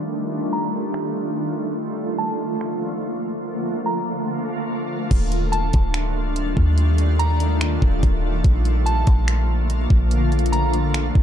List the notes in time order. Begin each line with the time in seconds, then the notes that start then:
Already playing: D#3 G3 A3 D4 F4
0.53 A#5
0.94 finger snap
1.78 D3 F3 A#3
2.18 A5
2.61 finger snap
3.86 A#5
5.11 D#1 D#3 G3 A3 D4 F4, kick, closed hi-hat, crash
5.32 closed hi-hat
5.52 A5, closed hi-hat
5.73 D1, kick, closed hi-hat
5.94 finger snap, closed hi-hat
6.36 closed hi-hat
6.57 D#2, kick
6.78 closed hi-hat
6.98 closed hi-hat
7.19 A#5, closed hi-hat
7.40 closed hi-hat
7.61 finger snap, closed hi-hat
7.82 D#1, kick
8.03 D#1, kick, closed hi-hat
8.44 A#1 D3 F3 A#3 F4, kick, closed hi-hat
8.65 closed hi-hat
8.86 A5, closed hi-hat
9.07 A#1, kick, closed hi-hat
9.28 finger snap, closed hi-hat
9.70 closed hi-hat
9.90 A#1, kick
10.11 closed hi-hat
10.32 closed hi-hat
10.39 closed hi-hat
10.46 closed hi-hat
10.52 A#5, closed hi-hat
10.73 closed hi-hat
10.94 finger snap, closed hi-hat
11.15 A#1, kick